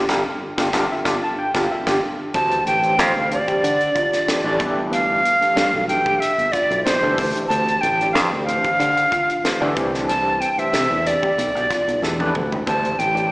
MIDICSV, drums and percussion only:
0, 0, Header, 1, 2, 480
1, 0, Start_track
1, 0, Key_signature, -1, "minor"
1, 0, Tempo, 645161
1, 1745, Time_signature, 4, 2, 24, 8
1, 9907, End_track
2, 0, Start_track
2, 0, Title_t, "Drums"
2, 66, Note_on_c, 9, 36, 87
2, 67, Note_on_c, 9, 38, 92
2, 140, Note_off_c, 9, 36, 0
2, 141, Note_off_c, 9, 38, 0
2, 432, Note_on_c, 9, 36, 90
2, 433, Note_on_c, 9, 38, 93
2, 507, Note_off_c, 9, 36, 0
2, 508, Note_off_c, 9, 38, 0
2, 545, Note_on_c, 9, 36, 91
2, 545, Note_on_c, 9, 38, 95
2, 619, Note_off_c, 9, 36, 0
2, 620, Note_off_c, 9, 38, 0
2, 784, Note_on_c, 9, 36, 87
2, 784, Note_on_c, 9, 38, 93
2, 858, Note_off_c, 9, 38, 0
2, 859, Note_off_c, 9, 36, 0
2, 1150, Note_on_c, 9, 38, 89
2, 1151, Note_on_c, 9, 36, 97
2, 1224, Note_off_c, 9, 38, 0
2, 1225, Note_off_c, 9, 36, 0
2, 1390, Note_on_c, 9, 36, 94
2, 1391, Note_on_c, 9, 38, 92
2, 1465, Note_off_c, 9, 36, 0
2, 1465, Note_off_c, 9, 38, 0
2, 1744, Note_on_c, 9, 36, 101
2, 1744, Note_on_c, 9, 42, 72
2, 1818, Note_off_c, 9, 36, 0
2, 1818, Note_off_c, 9, 42, 0
2, 1869, Note_on_c, 9, 42, 38
2, 1944, Note_off_c, 9, 42, 0
2, 1983, Note_on_c, 9, 42, 56
2, 2057, Note_off_c, 9, 42, 0
2, 2107, Note_on_c, 9, 42, 36
2, 2182, Note_off_c, 9, 42, 0
2, 2222, Note_on_c, 9, 42, 81
2, 2224, Note_on_c, 9, 38, 96
2, 2297, Note_off_c, 9, 42, 0
2, 2298, Note_off_c, 9, 38, 0
2, 2465, Note_on_c, 9, 42, 58
2, 2539, Note_off_c, 9, 42, 0
2, 2590, Note_on_c, 9, 36, 72
2, 2590, Note_on_c, 9, 42, 40
2, 2664, Note_off_c, 9, 42, 0
2, 2665, Note_off_c, 9, 36, 0
2, 2707, Note_on_c, 9, 42, 80
2, 2782, Note_off_c, 9, 42, 0
2, 2830, Note_on_c, 9, 42, 35
2, 2905, Note_off_c, 9, 42, 0
2, 2944, Note_on_c, 9, 36, 73
2, 2944, Note_on_c, 9, 42, 58
2, 3018, Note_off_c, 9, 36, 0
2, 3019, Note_off_c, 9, 42, 0
2, 3073, Note_on_c, 9, 42, 38
2, 3075, Note_on_c, 9, 38, 34
2, 3148, Note_off_c, 9, 42, 0
2, 3149, Note_off_c, 9, 38, 0
2, 3186, Note_on_c, 9, 42, 76
2, 3187, Note_on_c, 9, 38, 98
2, 3260, Note_off_c, 9, 42, 0
2, 3262, Note_off_c, 9, 38, 0
2, 3422, Note_on_c, 9, 36, 89
2, 3424, Note_on_c, 9, 42, 54
2, 3496, Note_off_c, 9, 36, 0
2, 3498, Note_off_c, 9, 42, 0
2, 3665, Note_on_c, 9, 42, 74
2, 3739, Note_off_c, 9, 42, 0
2, 3907, Note_on_c, 9, 42, 50
2, 3981, Note_off_c, 9, 42, 0
2, 4033, Note_on_c, 9, 42, 32
2, 4108, Note_off_c, 9, 42, 0
2, 4143, Note_on_c, 9, 42, 75
2, 4145, Note_on_c, 9, 38, 104
2, 4218, Note_off_c, 9, 42, 0
2, 4219, Note_off_c, 9, 38, 0
2, 4382, Note_on_c, 9, 42, 54
2, 4456, Note_off_c, 9, 42, 0
2, 4509, Note_on_c, 9, 36, 74
2, 4583, Note_off_c, 9, 36, 0
2, 4626, Note_on_c, 9, 42, 69
2, 4700, Note_off_c, 9, 42, 0
2, 4753, Note_on_c, 9, 42, 32
2, 4827, Note_off_c, 9, 42, 0
2, 4862, Note_on_c, 9, 36, 74
2, 4864, Note_on_c, 9, 42, 54
2, 4866, Note_on_c, 9, 38, 30
2, 4936, Note_off_c, 9, 36, 0
2, 4939, Note_off_c, 9, 42, 0
2, 4940, Note_off_c, 9, 38, 0
2, 4994, Note_on_c, 9, 42, 35
2, 5068, Note_off_c, 9, 42, 0
2, 5107, Note_on_c, 9, 42, 71
2, 5108, Note_on_c, 9, 38, 102
2, 5181, Note_off_c, 9, 42, 0
2, 5183, Note_off_c, 9, 38, 0
2, 5343, Note_on_c, 9, 36, 88
2, 5346, Note_on_c, 9, 46, 68
2, 5418, Note_off_c, 9, 36, 0
2, 5420, Note_off_c, 9, 46, 0
2, 5473, Note_on_c, 9, 42, 37
2, 5548, Note_off_c, 9, 42, 0
2, 5587, Note_on_c, 9, 42, 78
2, 5662, Note_off_c, 9, 42, 0
2, 5715, Note_on_c, 9, 42, 35
2, 5790, Note_off_c, 9, 42, 0
2, 5825, Note_on_c, 9, 42, 54
2, 5899, Note_off_c, 9, 42, 0
2, 5958, Note_on_c, 9, 42, 35
2, 6032, Note_off_c, 9, 42, 0
2, 6066, Note_on_c, 9, 42, 77
2, 6068, Note_on_c, 9, 38, 105
2, 6141, Note_off_c, 9, 42, 0
2, 6142, Note_off_c, 9, 38, 0
2, 6312, Note_on_c, 9, 42, 58
2, 6386, Note_off_c, 9, 42, 0
2, 6432, Note_on_c, 9, 36, 74
2, 6434, Note_on_c, 9, 42, 38
2, 6507, Note_off_c, 9, 36, 0
2, 6509, Note_off_c, 9, 42, 0
2, 6547, Note_on_c, 9, 42, 85
2, 6622, Note_off_c, 9, 42, 0
2, 6675, Note_on_c, 9, 42, 37
2, 6749, Note_off_c, 9, 42, 0
2, 6785, Note_on_c, 9, 36, 78
2, 6788, Note_on_c, 9, 42, 60
2, 6860, Note_off_c, 9, 36, 0
2, 6862, Note_off_c, 9, 42, 0
2, 6916, Note_on_c, 9, 42, 37
2, 6990, Note_off_c, 9, 42, 0
2, 7029, Note_on_c, 9, 42, 78
2, 7030, Note_on_c, 9, 38, 95
2, 7103, Note_off_c, 9, 42, 0
2, 7105, Note_off_c, 9, 38, 0
2, 7267, Note_on_c, 9, 36, 89
2, 7268, Note_on_c, 9, 42, 54
2, 7341, Note_off_c, 9, 36, 0
2, 7342, Note_off_c, 9, 42, 0
2, 7399, Note_on_c, 9, 38, 34
2, 7473, Note_off_c, 9, 38, 0
2, 7508, Note_on_c, 9, 42, 76
2, 7582, Note_off_c, 9, 42, 0
2, 7748, Note_on_c, 9, 42, 53
2, 7823, Note_off_c, 9, 42, 0
2, 7875, Note_on_c, 9, 42, 33
2, 7949, Note_off_c, 9, 42, 0
2, 7987, Note_on_c, 9, 42, 74
2, 7989, Note_on_c, 9, 38, 107
2, 8062, Note_off_c, 9, 42, 0
2, 8063, Note_off_c, 9, 38, 0
2, 8231, Note_on_c, 9, 42, 58
2, 8305, Note_off_c, 9, 42, 0
2, 8356, Note_on_c, 9, 36, 71
2, 8430, Note_off_c, 9, 36, 0
2, 8471, Note_on_c, 9, 42, 74
2, 8545, Note_off_c, 9, 42, 0
2, 8603, Note_on_c, 9, 42, 32
2, 8677, Note_off_c, 9, 42, 0
2, 8709, Note_on_c, 9, 36, 80
2, 8712, Note_on_c, 9, 42, 52
2, 8714, Note_on_c, 9, 38, 32
2, 8783, Note_off_c, 9, 36, 0
2, 8786, Note_off_c, 9, 42, 0
2, 8788, Note_off_c, 9, 38, 0
2, 8841, Note_on_c, 9, 42, 34
2, 8915, Note_off_c, 9, 42, 0
2, 8954, Note_on_c, 9, 38, 53
2, 9028, Note_off_c, 9, 38, 0
2, 9077, Note_on_c, 9, 48, 57
2, 9151, Note_off_c, 9, 48, 0
2, 9189, Note_on_c, 9, 45, 77
2, 9263, Note_off_c, 9, 45, 0
2, 9318, Note_on_c, 9, 43, 81
2, 9392, Note_off_c, 9, 43, 0
2, 9428, Note_on_c, 9, 36, 103
2, 9430, Note_on_c, 9, 42, 69
2, 9503, Note_off_c, 9, 36, 0
2, 9504, Note_off_c, 9, 42, 0
2, 9558, Note_on_c, 9, 42, 35
2, 9632, Note_off_c, 9, 42, 0
2, 9668, Note_on_c, 9, 42, 51
2, 9742, Note_off_c, 9, 42, 0
2, 9797, Note_on_c, 9, 42, 35
2, 9871, Note_off_c, 9, 42, 0
2, 9907, End_track
0, 0, End_of_file